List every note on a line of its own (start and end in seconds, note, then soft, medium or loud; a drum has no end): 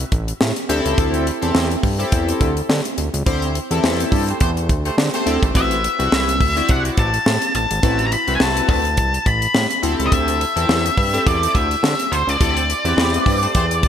0.00 closed hi-hat medium
0.12 0.33 A1 loud
0.12 kick medium
0.12 closed hi-hat medium
0.28 closed hi-hat medium
0.41 0.53 A2 loud
0.41 snare loud
0.56 closed hi-hat medium
0.69 0.81 D2 loud
0.69 1.26 C4 loud
0.69 1.26 E4 loud
0.69 1.27 G4 loud
0.69 1.27 A4 loud
0.69 closed hi-hat medium
0.85 0.95 C#2 loud
0.85 closed hi-hat medium
0.98 1.31 D2 loud
0.98 kick loud
0.98 closed hi-hat loud
1.14 closed hi-hat medium
1.27 closed hi-hat medium
1.42 1.52 E2 medium
1.42 1.68 C4 loud
1.42 1.69 E4 medium
1.42 1.69 G4 medium
1.42 1.69 A4 medium
1.42 closed hi-hat medium
1.55 1.76 E2 loud
1.55 snare loud
1.71 closed hi-hat medium
1.83 2.04 G2 medium
1.83 kick loud
1.83 open hi-hat medium
1.99 2.52 C4 medium
1.99 2.52 E4 medium
1.99 2.52 G4 medium
1.99 2.52 A4 medium
1.99 closed hi-hat medium
2.12 2.33 E2 loud
2.12 kick loud
2.12 closed hi-hat loud
2.29 closed hi-hat medium
2.41 2.62 D2 loud
2.41 kick medium
2.41 closed hi-hat medium
2.57 closed hi-hat medium
2.69 2.81 D3 loud
2.69 snare loud
2.85 closed hi-hat medium
2.98 3.10 D2 medium
2.98 closed hi-hat medium
3.14 3.23 C#2 loud
3.14 closed hi-hat medium
3.26 3.59 D2 loud
3.26 3.47 C4 medium
3.26 3.47 E4 medium
3.26 3.47 G4 medium
3.26 3.47 C5 loud
3.26 kick loud
3.26 closed hi-hat loud
3.42 closed hi-hat medium
3.55 closed hi-hat medium
3.71 3.80 E2 loud
3.71 4.23 C4 medium
3.71 4.24 E4 medium
3.71 4.24 G4 medium
3.71 4.24 A4 loud
3.71 closed hi-hat soft
3.84 4.05 E2 loud
3.84 snare loud
4.00 closed hi-hat medium
4.12 4.33 G2 medium
4.12 kick loud
4.12 open hi-hat medium
4.28 4.39 A3 medium
4.28 4.39 G4 medium
4.28 4.39 C5 medium
4.28 closed hi-hat medium
4.40 4.71 E2 loud
4.40 4.51 A3 loud
4.40 4.51 G4 loud
4.40 4.51 C5 loud
4.40 kick loud
4.40 closed hi-hat loud
4.57 closed hi-hat medium
4.69 4.90 D2 medium
4.69 kick loud
4.69 closed hi-hat medium
4.85 4.96 A3 medium
4.85 4.96 G4 medium
4.85 4.96 C5 loud
4.85 closed hi-hat medium
4.98 5.10 D3 loud
4.98 snare loud
5.14 5.53 A3 loud
5.14 5.53 G4 medium
5.14 5.53 C5 loud
5.14 closed hi-hat medium
5.26 5.38 D2 loud
5.26 5.40 C4 loud
5.26 5.40 E4 medium
5.26 5.40 G4 loud
5.26 5.41 A4 loud
5.26 closed hi-hat medium
5.42 5.52 G#1 loud
5.42 kick loud
5.42 closed hi-hat medium
5.54 5.88 A1 loud
5.54 5.75 C4 medium
5.54 5.76 E4 medium
5.54 5.76 F#4 medium
5.54 5.76 B4 medium
5.54 6.71 E5 loud
5.54 kick loud
5.54 closed hi-hat loud
5.71 closed hi-hat soft
5.84 closed hi-hat medium
5.99 6.09 C2 loud
5.99 6.25 C4 medium
5.99 6.26 E4 medium
5.99 6.26 F#4 medium
5.99 6.26 B4 medium
5.99 closed hi-hat soft
6.12 6.42 C2 loud
6.12 snare loud
6.29 closed hi-hat medium
6.40 6.62 D2 loud
6.40 kick loud
6.40 open hi-hat medium
6.56 7.09 C4 medium
6.56 7.09 E4 medium
6.56 7.09 F#4 medium
6.56 7.09 D5 medium
6.56 closed hi-hat soft
6.69 6.90 C2 loud
6.69 6.79 F#5 medium
6.69 kick loud
6.69 closed hi-hat medium
6.85 closed hi-hat medium
6.97 7.19 A1 medium
6.97 7.55 A5 medium
6.97 kick loud
6.97 closed hi-hat medium
7.14 closed hi-hat medium
7.26 7.38 A2 loud
7.26 snare loud
7.42 closed hi-hat medium
7.55 7.67 A1 medium
7.55 8.06 A5 loud
7.55 closed hi-hat medium
7.71 7.80 G#1 loud
7.71 closed hi-hat medium
7.83 8.16 A1 loud
7.83 8.04 C4 medium
7.83 8.04 E4 medium
7.83 8.04 F#4 medium
7.83 8.04 B4 medium
7.83 kick loud
7.83 closed hi-hat loud
7.99 closed hi-hat soft
8.07 8.12 A#5 medium
8.12 8.33 B5 loud
8.12 closed hi-hat medium
8.27 8.37 C2 loud
8.27 8.80 C4 medium
8.27 8.80 E4 medium
8.27 8.81 F#4 medium
8.27 8.81 B4 medium
8.27 closed hi-hat soft
8.35 8.41 G#5 medium
8.40 8.62 C2 loud
8.40 8.68 A5 medium
8.40 snare loud
8.57 closed hi-hat medium
8.69 8.99 D2 loud
8.69 9.26 A5 loud
8.69 kick loud
8.69 open hi-hat medium
8.85 closed hi-hat soft
8.97 9.19 C2 loud
8.97 kick loud
8.97 closed hi-hat medium
9.14 closed hi-hat medium
9.26 9.47 A1 medium
9.26 9.80 B5 loud
9.26 kick medium
9.26 closed hi-hat medium
9.42 closed hi-hat medium
9.55 9.67 A2 loud
9.55 snare loud
9.70 closed hi-hat medium
9.82 9.95 D2 loud
9.82 10.40 C4 medium
9.82 10.40 E4 medium
9.82 10.40 G4 medium
9.82 10.40 A4 loud
9.82 closed hi-hat medium
9.99 10.09 C#2 medium
9.99 closed hi-hat medium
10.07 10.12 D#5 medium
10.12 10.45 D2 loud
10.12 11.30 E5 loud
10.12 kick loud
10.12 closed hi-hat loud
10.28 closed hi-hat medium
10.41 closed hi-hat medium
10.56 10.66 E2 loud
10.56 10.83 C4 medium
10.56 10.83 E4 medium
10.56 10.83 G4 medium
10.56 10.83 A4 medium
10.56 closed hi-hat medium
10.69 10.90 E2 loud
10.69 snare loud
10.86 closed hi-hat medium
10.97 11.19 G2 medium
10.97 kick loud
10.97 open hi-hat medium
11.13 11.66 C4 medium
11.13 11.66 E4 medium
11.13 11.66 G4 medium
11.13 11.66 A4 medium
11.13 closed hi-hat soft
11.26 11.48 E2 loud
11.26 11.56 D5 loud
11.26 kick loud
11.26 closed hi-hat medium
11.43 closed hi-hat medium
11.55 11.76 D2 loud
11.55 12.14 E5 loud
11.55 kick loud
11.55 closed hi-hat medium
11.71 closed hi-hat medium
11.83 11.95 D3 loud
11.83 snare loud
11.99 closed hi-hat medium
12.12 12.24 D2 medium
12.12 12.29 C5 medium
12.12 closed hi-hat medium
12.27 12.37 C#2 loud
12.27 13.88 D5 medium
12.27 closed hi-hat medium
12.40 12.74 D2 medium
12.40 12.61 C4 medium
12.40 12.61 E4 medium
12.40 12.62 G4 medium
12.40 12.62 A4 loud
12.40 kick loud
12.40 closed hi-hat loud
12.57 closed hi-hat medium
12.70 closed hi-hat medium
12.85 12.94 E2 loud
12.85 13.38 C4 medium
12.85 13.38 E4 medium
12.85 13.38 G4 medium
12.85 13.38 B4 medium
12.85 closed hi-hat medium
12.97 13.18 E2 medium
12.97 snare loud
13.14 closed hi-hat medium
13.26 13.47 G2 medium
13.26 kick medium
13.26 open hi-hat medium
13.42 13.53 A3 medium
13.42 13.53 G4 medium
13.42 13.53 C5 medium
13.42 closed hi-hat medium
13.55 13.85 E2 loud
13.55 13.65 A3 medium
13.55 13.65 G4 medium
13.55 13.65 C5 loud
13.55 kick loud
13.55 closed hi-hat loud
13.71 closed hi-hat medium
13.83 13.88 D2 medium
13.83 kick loud
13.83 closed hi-hat medium